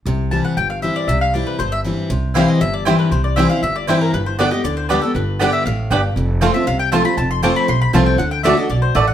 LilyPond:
<<
  \new Staff \with { instrumentName = "Mandolin" } { \time 4/4 \key c \major \tempo 4 = 236 r4 a''8 fis''8 g''8 f''8 e''8 d''8 | e''8 f''8 d''8 b'8 c''8 e''8 r4 | r4 f''8 ees''8 e''8 d''8 c''8 b'8 | c''8 d''8 e''8 f''8 e''8 d''8 c''8 bes'8 |
b'8 c''8 d''8 ees''8 d''8 c''8 b'8 a'8 | b'4. e''8 f''2 | r4. e''8 f''8 g''8 a''8 b''8 | a''8 c'''8 d'''8 b''8 c'''8 b''8 a''8 g''8 |
fis''8 g''8 e''8 ees''8 d''8 c''8 e''8 fis''8 | }
  \new Staff \with { instrumentName = "Mandolin" } { \time 4/4 \key c \major r1 | r1 | r4 <c' e' c'' g''>8 r4. <c' e' c'' g''>8 r8 | r4 <c' e' c'' g''>8 r4. <c' e' c'' g''>8 r8 |
r4 <b g' d'' g''>8 r4. <b g' d'' g''>8 r8 | r4 <b g' d'' g''>8 r4. <b g' d'' g''>8 r8 | r4 <c' f' c'' a''>8 r4. <c' f' c'' a''>8 r8 | r4 <c' f' c'' a''>8 r4. <c' f' c'' a''>8 r8 |
r4 <a fis' d'' a''>8 r4. <a fis' d'' a''>8 r8 | }
  \new Staff \with { instrumentName = "Five-string banjo" } { \time 4/4 \key c \major r1 | r1 | r4 <g c' e'>8 r4. <g c' e'>8 r8 | r4 <g c' e'>8 r4. <g c' e'>8 r8 |
r4 <g b d'>8 r4. <g b d'>8 r8 | r4 <g b d'>8 r4. <g b d'>8 r8 | r4 <a c' f'>8 r4. <a c' f'>8 r8 | r4 <a c' f'>8 r4. <a c' f'>8 r8 |
r4 <a d'>8 r4. <a d'>8 r8 | }
  \new Staff \with { instrumentName = "Steel-string acoustic guitar" } { \time 4/4 \key c \major << { r4 <e g c' e'>4 r4 <e g c' e'>4 | r4 <e g c' e'>4 r4 <e g c' e'>4 | r4 <e g c' e'>4 r4 <e g c' e'>4 | r4 <e g c' e'>8 <c' e'>8 r4 <e g c' e'>4 |
r4 <d g b g'>8 <b g'>8 r4 <d g b g'>8 <b g'>8 | r4 <d g b g'>4 r2 | r4 <f a c' f'>8 <c' f'>8 r4 <f a c' f'>8 <c' f'>8 | r4 <f a c' f'>4 r4 <f a c' f'>4 |
r4 <d a d' fis'>8 <d' fis'>8 r2 | } \\ { c2 g,2 | c2 g,2 | c2 g,2 | c2 g,2 |
g,2 d2 | g,2 a,4 g,4 | f,2 c2 | f,2 c2 |
d2 b,4 a,4 | } >> }
  \new Staff \with { instrumentName = "Upright bass" } { \clef bass \time 4/4 \key c \major c,2 g,,2 | c,2 g,,2 | c,2 g,,2 | c,2 g,,2 |
g,,2 d,2 | g,,2 a,,4 g,,4 | f,,2 c,2 | f,,2 b,,4 c,4 |
d,2 b,,4 a,,4 | }
>>